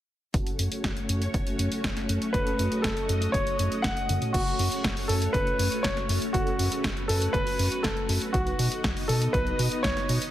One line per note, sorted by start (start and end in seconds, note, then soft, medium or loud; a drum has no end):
0.34 0.53 F#1 loud
0.34 0.69 A3 medium
0.34 4.30 A3 medium
0.34 4.30 C#4 medium
0.34 0.69 C#4 medium
0.34 4.30 F#4 medium
0.34 0.69 F#4 medium
0.34 0.69 A4 medium
0.34 2.32 C#5 medium
0.34 kick loud
0.34 closed hi-hat medium
0.47 closed hi-hat soft
0.59 0.68 F#2 medium
0.59 closed hi-hat medium
0.72 0.90 A3 medium
0.72 0.90 C#4 medium
0.72 0.90 F#4 medium
0.72 0.90 G#4 medium
0.72 closed hi-hat soft
0.84 0.93 F#1 medium
0.84 kick medium
0.84 snare loud
0.84 closed hi-hat medium
0.97 closed hi-hat soft
1.09 1.28 F#2 medium
1.09 closed hi-hat medium
1.22 closed hi-hat soft
1.34 1.53 F#1 loud
1.34 kick loud
1.34 closed hi-hat medium
1.47 closed hi-hat soft
1.59 1.69 F#2 loud
1.59 closed hi-hat medium
1.72 closed hi-hat soft
1.84 1.94 F#1 medium
1.84 kick medium
1.84 snare loud
1.84 closed hi-hat medium
1.97 snare soft
1.97 closed hi-hat soft
2.09 2.19 F#2 medium
2.09 closed hi-hat medium
2.22 closed hi-hat soft
2.33 2.53 F#1 loud
2.33 2.69 A3 medium
2.33 2.69 C#4 medium
2.33 2.69 F#4 medium
2.33 2.69 A4 medium
2.33 2.85 B4 medium
2.33 4.32 D#5 medium
2.33 kick loud
2.33 closed hi-hat medium
2.47 closed hi-hat soft
2.59 2.69 F#2 medium
2.59 closed hi-hat medium
2.72 2.90 A3 medium
2.72 2.90 C#4 medium
2.72 2.90 F#4 medium
2.72 2.90 G#4 medium
2.72 closed hi-hat soft
2.82 2.94 F#1 medium
2.82 3.35 A4 medium
2.82 kick loud
2.82 snare loud
2.82 closed hi-hat medium
2.97 closed hi-hat soft
3.09 3.28 F#2 loud
3.09 closed hi-hat medium
3.22 closed hi-hat soft
3.32 3.44 F#1 loud
3.32 3.80 C#5 loud
3.32 kick loud
3.32 closed hi-hat medium
3.47 closed hi-hat soft
3.59 3.69 F#2 medium
3.59 closed hi-hat medium
3.72 closed hi-hat soft
3.82 3.94 F#1 medium
3.82 4.18 F#5 loud
3.82 kick loud
3.82 snare loud
3.82 closed hi-hat medium
3.97 closed hi-hat soft
4.09 4.19 F#2 medium
4.09 closed hi-hat medium
4.09 high tom medium
4.22 closed hi-hat soft
4.22 mid tom medium
4.33 4.53 F#1 loud
4.33 4.69 A3 medium
4.33 8.30 A3 medium
4.33 4.69 C#4 medium
4.33 8.30 C#4 medium
4.33 5.11 F#4 medium
4.33 4.69 F#4 medium
4.33 10.30 F#4 medium
4.33 4.69 A4 medium
4.33 6.32 C#5 medium
4.33 kick loud
4.33 closed hi-hat medium
4.33 crash medium
4.47 closed hi-hat soft
4.59 4.69 F#2 loud
4.59 open hi-hat loud
4.72 4.90 A3 medium
4.72 4.90 C#4 medium
4.72 4.90 F#4 medium
4.72 4.90 G#4 medium
4.72 closed hi-hat medium
4.84 4.94 F#1 medium
4.84 kick loud
4.84 snare loud
4.84 closed hi-hat medium
4.97 open hi-hat medium
5.08 5.28 F#2 loud
5.08 5.34 A4 medium
5.08 open hi-hat loud
5.22 closed hi-hat soft
5.33 5.53 F#1 loud
5.33 5.85 B4 medium
5.33 kick loud
5.33 closed hi-hat medium
5.47 closed hi-hat soft
5.59 5.69 F#2 loud
5.59 open hi-hat loud
5.72 closed hi-hat medium
5.83 5.94 F#1 loud
5.83 6.18 C#5 loud
5.83 kick loud
5.83 snare loud
5.83 closed hi-hat soft
5.97 snare soft
5.97 closed hi-hat soft
6.09 6.19 F#2 medium
6.09 open hi-hat loud
6.22 closed hi-hat medium
6.33 6.53 F#1 loud
6.33 6.69 A3 medium
6.33 6.69 C#4 medium
6.33 7.05 F#4 medium
6.33 6.69 F#4 medium
6.33 6.69 A4 medium
6.33 8.32 B4 medium
6.33 kick loud
6.33 closed hi-hat medium
6.47 closed hi-hat soft
6.59 6.69 F#2 loud
6.59 open hi-hat loud
6.72 6.90 A3 medium
6.72 6.90 C#4 medium
6.72 6.90 F#4 medium
6.72 6.90 G#4 medium
6.72 closed hi-hat medium
6.84 6.94 F#1 medium
6.84 kick loud
6.84 snare loud
6.84 closed hi-hat medium
6.97 closed hi-hat soft
7.08 7.28 F#2 loud
7.08 7.34 A4 medium
7.08 open hi-hat loud
7.22 closed hi-hat medium
7.33 7.44 F#1 medium
7.33 7.85 B4 loud
7.33 kick loud
7.33 closed hi-hat medium
7.47 open hi-hat medium
7.59 7.69 F#2 loud
7.59 open hi-hat loud
7.72 closed hi-hat medium
7.83 7.93 F#1 medium
7.83 8.18 A4 medium
7.83 kick loud
7.83 snare loud
7.83 closed hi-hat medium
7.97 closed hi-hat soft
8.09 8.19 F#2 medium
8.09 open hi-hat loud
8.22 closed hi-hat medium
8.33 8.53 B1 loud
8.33 10.31 B3 medium
8.33 8.69 B3 medium
8.33 10.31 D#4 medium
8.33 8.69 D#4 medium
8.33 9.11 F#4 medium
8.33 8.69 F#4 medium
8.33 8.69 B4 medium
8.33 10.31 D#5 medium
8.33 kick loud
8.33 closed hi-hat medium
8.47 closed hi-hat soft
8.59 8.69 B2 loud
8.59 open hi-hat loud
8.72 8.90 B3 medium
8.72 8.90 D#4 medium
8.72 8.90 F#4 medium
8.72 8.90 A4 medium
8.72 closed hi-hat soft
8.84 8.93 B1 medium
8.84 kick loud
8.84 snare loud
8.84 closed hi-hat medium
8.97 open hi-hat medium
9.08 9.28 B2 loud
9.08 9.34 A4 medium
9.08 open hi-hat loud
9.22 closed hi-hat medium
9.33 9.53 B1 loud
9.33 9.85 B4 loud
9.33 kick loud
9.33 closed hi-hat medium
9.47 closed hi-hat soft
9.59 9.69 B2 loud
9.59 open hi-hat loud
9.72 closed hi-hat medium
9.83 9.93 B1 loud
9.83 10.18 C#5 loud
9.83 kick loud
9.83 snare loud
9.83 closed hi-hat medium
9.97 snare soft
9.97 closed hi-hat soft
10.09 10.19 B2 medium
10.09 open hi-hat loud
10.22 closed hi-hat medium